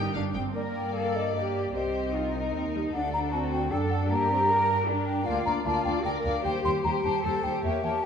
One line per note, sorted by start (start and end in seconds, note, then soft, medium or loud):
0.00 0.14 D#4 medium
0.00 0.15 G4 medium
0.00 0.13 G5 medium
0.14 0.24 G1 soft
0.14 0.23 G2 soft
0.14 0.35 D4 medium
0.14 0.22 F5 soft
0.34 0.44 G1 soft
0.34 0.44 G2 soft
0.34 0.55 C4 medium
0.34 0.42 G5 soft
0.54 1.72 G2 soft
0.54 1.32 A#3 soft
0.54 0.93 A#4 soft
0.54 1.32 A#4 soft
0.54 1.71 D5 soft
0.54 0.62 D5 medium
0.76 0.95 G5 medium
0.96 1.36 A4 soft
0.96 1.17 F5 medium
1.16 1.35 D#5 medium
1.36 1.75 A#3 soft
1.36 1.75 G4 soft
1.36 1.74 G4 soft
1.36 1.42 D#5 medium
1.55 1.77 D5 soft
1.75 2.54 C2 soft
1.75 2.54 C4 soft
1.75 2.14 G4 soft
1.75 2.15 C5 soft
1.75 2.74 D#5 medium
2.14 2.92 D#4 soft
2.14 2.34 F4 soft
2.14 2.93 A#4 soft
2.34 2.92 D#4 soft
2.55 2.93 D#2 soft
2.55 2.63 C4 soft
2.74 2.82 G3 soft
2.92 3.69 D2 soft
2.92 3.32 A3 soft
2.92 3.32 D4 medium
2.92 3.69 D4 soft
2.92 3.69 A4 soft
2.92 3.12 F#5 medium
3.13 3.19 A#5 medium
3.33 3.71 C4 soft
3.33 3.71 F#4 medium
3.33 3.39 A5 medium
3.52 3.71 G5 medium
3.70 4.10 F#2 soft
3.70 4.09 D4 medium
3.70 4.10 D4 medium
3.70 4.09 A4 soft
3.70 4.10 A4 medium
3.70 3.77 G5 medium
3.90 3.96 F#5 medium
4.09 5.27 G2 soft
4.09 4.30 A#3 medium
4.09 4.48 D4 soft
4.09 4.48 G4 medium
4.09 4.87 A#4 soft
4.09 4.77 A#5 medium
4.31 4.38 C4 medium
4.49 4.87 D4 soft
4.49 4.88 G4 soft
4.49 4.88 A#4 medium
4.88 5.27 D4 medium
4.88 5.26 D4 medium
4.88 5.27 G4 soft
4.88 5.27 A#4 medium
5.07 5.28 G5 medium
5.26 5.35 D2 medium
5.26 5.45 A#3 medium
5.26 5.46 D4 medium
5.26 5.64 F4 medium
5.26 5.44 D5 medium
5.26 5.45 F5 medium
5.45 5.54 D2 medium
5.45 5.65 A#3 soft
5.45 5.65 D4 soft
5.45 5.64 D5 soft
5.45 5.51 A#5 medium
5.65 5.73 D2 medium
5.65 5.84 A#3 soft
5.65 5.84 D4 medium
5.65 6.04 F4 medium
5.65 5.84 D5 soft
5.65 5.84 A5 medium
5.85 5.93 D2 soft
5.85 6.05 A#3 soft
5.85 6.05 D4 medium
5.85 6.04 D5 soft
5.85 5.91 G5 medium
6.05 6.13 D2 medium
6.05 6.24 A#3 soft
6.05 6.24 D4 soft
6.05 6.45 A#4 medium
6.05 6.23 D5 soft
6.05 6.11 G5 medium
6.24 6.33 D2 medium
6.24 6.45 A#3 soft
6.24 6.45 D4 soft
6.24 6.44 D5 soft
6.24 6.44 F5 medium
6.44 6.53 D#2 medium
6.44 6.64 G3 soft
6.44 6.64 G4 medium
6.44 6.83 G4 medium
6.44 6.64 C5 medium
6.44 6.51 G5 medium
6.65 6.73 D#2 medium
6.65 6.84 G3 soft
6.65 6.84 G4 soft
6.65 6.83 C5 soft
6.65 6.71 C6 medium
6.84 6.92 D#2 soft
6.84 7.04 G3 soft
6.84 7.23 G4 medium
6.84 7.03 G4 soft
6.84 7.03 C5 soft
6.84 6.90 A#5 medium
7.04 7.13 D#2 medium
7.04 7.23 G3 soft
7.04 7.23 G4 soft
7.04 7.24 C5 soft
7.04 7.22 A5 medium
7.23 7.32 D#2 soft
7.23 7.44 G3 soft
7.23 7.43 G4 soft
7.23 7.63 A4 medium
7.23 7.43 C5 soft
7.23 7.45 A5 medium
7.43 7.52 D#2 medium
7.43 7.64 G3 soft
7.43 7.62 G4 soft
7.43 7.63 C5 soft
7.43 7.63 G5 medium
7.64 7.72 E2 medium
7.64 7.82 A#3 soft
7.64 8.06 G4 medium
7.64 7.83 G4 soft
7.64 7.83 C#5 soft
7.64 7.86 E5 medium
7.84 7.92 E2 soft
7.84 8.02 A#3 soft
7.84 8.02 G4 soft
7.84 8.02 C#5 soft
7.84 8.05 A5 medium